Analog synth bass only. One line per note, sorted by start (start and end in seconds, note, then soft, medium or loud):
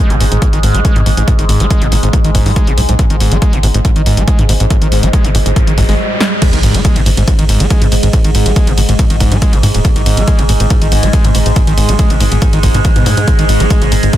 0.10 0.18 G#1 medium
0.20 0.29 G#1 loud
0.32 0.39 G#1 medium
0.53 0.61 G#1 medium
0.63 0.72 G#1 loud
0.75 0.82 G#1 medium
0.96 1.04 G#2 medium
1.06 1.15 G#1 loud
1.17 1.25 A1 medium
1.39 1.47 G#1 medium
1.49 1.58 G#1 medium
1.60 1.68 G#1 medium
1.82 1.89 G#1 medium
1.92 2.00 G#1 loud
2.03 2.11 G#1 medium
2.25 2.32 G#1 medium
2.35 2.43 G#1 loud
2.46 2.54 G#2 medium
2.67 2.75 A1 medium
2.78 2.86 B1 medium
2.89 2.97 B1 medium
3.10 3.18 G#1 medium
3.20 3.29 G#1 loud
3.32 3.39 G#1 medium
3.53 3.61 G#1 medium
3.63 3.72 G#1 loud
3.75 3.82 G#1 loud
3.96 4.04 G#1 medium
4.06 4.15 G#1 loud
4.17 4.25 G#1 medium
4.39 4.47 G#2 medium
4.49 4.58 G#1 loud
4.60 4.68 A1 medium
4.82 4.89 G#1 medium
4.92 5.00 G#1 loud
5.03 5.11 G#1 medium
5.25 5.32 G#1 medium
5.35 5.43 G#1 loud
5.46 5.54 G#1 medium
5.67 5.75 G#1 medium
5.78 5.86 G#1 loud
5.89 5.97 G#1 medium
6.53 6.61 G#1 medium
6.63 6.72 G#1 loud
6.75 6.82 G#1 medium
6.96 7.04 G#1 medium
7.06 7.15 G#1 loud
7.17 7.25 G#1 medium
7.39 7.47 G#1 medium
7.49 7.58 G#1 loud
7.60 7.68 G#1 medium
7.82 7.89 G#2 medium
7.92 8.00 G#1 loud
8.03 8.11 A1 medium
8.24 8.32 G#1 medium
8.35 8.43 G#1 loud
8.46 8.54 G#1 medium
8.67 8.75 G#1 medium
8.78 8.86 G#1 loud
8.89 8.97 G#1 medium
9.10 9.18 G#1 medium
9.20 9.29 G#1 loud
9.32 9.39 G#2 medium
9.53 9.61 A1 medium
9.63 9.72 G#2 loud
9.74 9.82 D#1 medium
9.96 10.04 G#1 medium
10.06 10.15 G#1 loud
10.17 10.25 G#1 medium
10.39 10.47 G#1 medium
10.49 10.57 G#1 loud
10.60 10.68 G#1 loud
10.82 10.89 G#1 medium
10.92 11.00 G#1 loud
11.03 11.11 G#1 medium
11.24 11.32 G#2 medium
11.35 11.43 G#1 loud
11.46 11.54 A1 medium
11.67 11.75 G#1 medium
11.78 11.86 G#1 loud
11.89 11.97 G#1 medium
12.10 12.18 G#1 medium
12.21 12.29 G#1 loud
12.32 12.39 G#1 medium
12.53 12.61 G#1 medium
12.63 12.72 G#1 loud
12.75 12.82 G#2 medium
12.96 13.04 G#2 medium
13.06 13.15 G#2 loud
13.17 13.25 G#2 medium
13.39 13.47 G#1 medium
13.49 13.58 G#1 loud
13.60 13.68 G#1 medium
13.82 13.89 G#1 medium
13.92 14.00 G#1 loud
14.03 14.11 G#1 medium